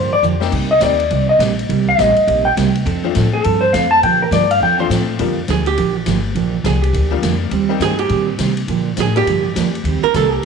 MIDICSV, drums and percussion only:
0, 0, Header, 1, 2, 480
1, 0, Start_track
1, 0, Key_signature, -2, "major"
1, 0, Tempo, 291545
1, 861, Time_signature, 4, 2, 24, 8
1, 17205, End_track
2, 0, Start_track
2, 0, Title_t, "Drums"
2, 382, Note_on_c, 9, 44, 64
2, 547, Note_off_c, 9, 44, 0
2, 678, Note_on_c, 9, 38, 73
2, 843, Note_off_c, 9, 38, 0
2, 857, Note_on_c, 9, 49, 78
2, 858, Note_on_c, 9, 36, 75
2, 1022, Note_off_c, 9, 49, 0
2, 1023, Note_off_c, 9, 36, 0
2, 1332, Note_on_c, 9, 38, 69
2, 1332, Note_on_c, 9, 44, 61
2, 1332, Note_on_c, 9, 51, 80
2, 1497, Note_off_c, 9, 38, 0
2, 1497, Note_off_c, 9, 44, 0
2, 1497, Note_off_c, 9, 51, 0
2, 1642, Note_on_c, 9, 51, 53
2, 1806, Note_off_c, 9, 51, 0
2, 1820, Note_on_c, 9, 51, 62
2, 1985, Note_off_c, 9, 51, 0
2, 2308, Note_on_c, 9, 38, 84
2, 2308, Note_on_c, 9, 44, 68
2, 2308, Note_on_c, 9, 51, 80
2, 2473, Note_off_c, 9, 38, 0
2, 2473, Note_off_c, 9, 44, 0
2, 2473, Note_off_c, 9, 51, 0
2, 2619, Note_on_c, 9, 51, 50
2, 2784, Note_off_c, 9, 51, 0
2, 2795, Note_on_c, 9, 51, 61
2, 2959, Note_off_c, 9, 51, 0
2, 3273, Note_on_c, 9, 38, 65
2, 3273, Note_on_c, 9, 44, 61
2, 3273, Note_on_c, 9, 51, 70
2, 3438, Note_off_c, 9, 38, 0
2, 3438, Note_off_c, 9, 44, 0
2, 3438, Note_off_c, 9, 51, 0
2, 3565, Note_on_c, 9, 51, 50
2, 3729, Note_off_c, 9, 51, 0
2, 3754, Note_on_c, 9, 51, 64
2, 3918, Note_off_c, 9, 51, 0
2, 4235, Note_on_c, 9, 38, 83
2, 4235, Note_on_c, 9, 44, 67
2, 4235, Note_on_c, 9, 51, 88
2, 4400, Note_off_c, 9, 38, 0
2, 4400, Note_off_c, 9, 44, 0
2, 4400, Note_off_c, 9, 51, 0
2, 4535, Note_on_c, 9, 51, 53
2, 4699, Note_off_c, 9, 51, 0
2, 4716, Note_on_c, 9, 51, 58
2, 4881, Note_off_c, 9, 51, 0
2, 5184, Note_on_c, 9, 38, 64
2, 5184, Note_on_c, 9, 44, 56
2, 5184, Note_on_c, 9, 51, 66
2, 5348, Note_off_c, 9, 38, 0
2, 5348, Note_off_c, 9, 44, 0
2, 5348, Note_off_c, 9, 51, 0
2, 5671, Note_on_c, 9, 51, 77
2, 5835, Note_off_c, 9, 51, 0
2, 6157, Note_on_c, 9, 38, 91
2, 6157, Note_on_c, 9, 44, 72
2, 6157, Note_on_c, 9, 51, 86
2, 6322, Note_off_c, 9, 38, 0
2, 6322, Note_off_c, 9, 44, 0
2, 6322, Note_off_c, 9, 51, 0
2, 6637, Note_on_c, 9, 51, 62
2, 6802, Note_off_c, 9, 51, 0
2, 7116, Note_on_c, 9, 38, 79
2, 7116, Note_on_c, 9, 44, 54
2, 7116, Note_on_c, 9, 51, 80
2, 7280, Note_off_c, 9, 38, 0
2, 7280, Note_off_c, 9, 44, 0
2, 7280, Note_off_c, 9, 51, 0
2, 7421, Note_on_c, 9, 51, 81
2, 7585, Note_off_c, 9, 51, 0
2, 8083, Note_on_c, 9, 38, 82
2, 8083, Note_on_c, 9, 44, 59
2, 8083, Note_on_c, 9, 51, 82
2, 8248, Note_off_c, 9, 38, 0
2, 8248, Note_off_c, 9, 44, 0
2, 8248, Note_off_c, 9, 51, 0
2, 8544, Note_on_c, 9, 51, 70
2, 8709, Note_off_c, 9, 51, 0
2, 9022, Note_on_c, 9, 38, 66
2, 9022, Note_on_c, 9, 44, 52
2, 9022, Note_on_c, 9, 51, 64
2, 9186, Note_off_c, 9, 38, 0
2, 9186, Note_off_c, 9, 44, 0
2, 9186, Note_off_c, 9, 51, 0
2, 9319, Note_on_c, 9, 51, 53
2, 9484, Note_off_c, 9, 51, 0
2, 9508, Note_on_c, 9, 51, 68
2, 9673, Note_off_c, 9, 51, 0
2, 9977, Note_on_c, 9, 38, 83
2, 9977, Note_on_c, 9, 44, 61
2, 9977, Note_on_c, 9, 51, 79
2, 10141, Note_off_c, 9, 38, 0
2, 10141, Note_off_c, 9, 44, 0
2, 10141, Note_off_c, 9, 51, 0
2, 10462, Note_on_c, 9, 51, 54
2, 10627, Note_off_c, 9, 51, 0
2, 10941, Note_on_c, 9, 38, 67
2, 10941, Note_on_c, 9, 44, 53
2, 10941, Note_on_c, 9, 51, 63
2, 11106, Note_off_c, 9, 38, 0
2, 11106, Note_off_c, 9, 44, 0
2, 11106, Note_off_c, 9, 51, 0
2, 11253, Note_on_c, 9, 51, 56
2, 11418, Note_off_c, 9, 51, 0
2, 11431, Note_on_c, 9, 51, 61
2, 11596, Note_off_c, 9, 51, 0
2, 11903, Note_on_c, 9, 38, 83
2, 11903, Note_on_c, 9, 44, 66
2, 11903, Note_on_c, 9, 51, 79
2, 12067, Note_off_c, 9, 38, 0
2, 12067, Note_off_c, 9, 44, 0
2, 12067, Note_off_c, 9, 51, 0
2, 12369, Note_on_c, 9, 51, 56
2, 12533, Note_off_c, 9, 51, 0
2, 12853, Note_on_c, 9, 38, 74
2, 12853, Note_on_c, 9, 44, 59
2, 12853, Note_on_c, 9, 51, 67
2, 13018, Note_off_c, 9, 38, 0
2, 13018, Note_off_c, 9, 44, 0
2, 13018, Note_off_c, 9, 51, 0
2, 13149, Note_on_c, 9, 51, 57
2, 13314, Note_off_c, 9, 51, 0
2, 13327, Note_on_c, 9, 51, 65
2, 13491, Note_off_c, 9, 51, 0
2, 13807, Note_on_c, 9, 38, 78
2, 13807, Note_on_c, 9, 44, 60
2, 13807, Note_on_c, 9, 51, 82
2, 13972, Note_off_c, 9, 38, 0
2, 13972, Note_off_c, 9, 44, 0
2, 13972, Note_off_c, 9, 51, 0
2, 14109, Note_on_c, 9, 51, 57
2, 14273, Note_off_c, 9, 51, 0
2, 14293, Note_on_c, 9, 51, 67
2, 14458, Note_off_c, 9, 51, 0
2, 14764, Note_on_c, 9, 38, 68
2, 14764, Note_on_c, 9, 44, 70
2, 14764, Note_on_c, 9, 51, 75
2, 14928, Note_off_c, 9, 38, 0
2, 14928, Note_off_c, 9, 44, 0
2, 14928, Note_off_c, 9, 51, 0
2, 15077, Note_on_c, 9, 51, 52
2, 15242, Note_off_c, 9, 51, 0
2, 15264, Note_on_c, 9, 51, 72
2, 15429, Note_off_c, 9, 51, 0
2, 15741, Note_on_c, 9, 38, 85
2, 15741, Note_on_c, 9, 44, 70
2, 15741, Note_on_c, 9, 51, 79
2, 15905, Note_off_c, 9, 38, 0
2, 15905, Note_off_c, 9, 44, 0
2, 15905, Note_off_c, 9, 51, 0
2, 16054, Note_on_c, 9, 51, 52
2, 16215, Note_off_c, 9, 51, 0
2, 16215, Note_on_c, 9, 51, 61
2, 16380, Note_off_c, 9, 51, 0
2, 16699, Note_on_c, 9, 38, 69
2, 16699, Note_on_c, 9, 44, 62
2, 16699, Note_on_c, 9, 51, 67
2, 16864, Note_off_c, 9, 38, 0
2, 16864, Note_off_c, 9, 44, 0
2, 16864, Note_off_c, 9, 51, 0
2, 17205, End_track
0, 0, End_of_file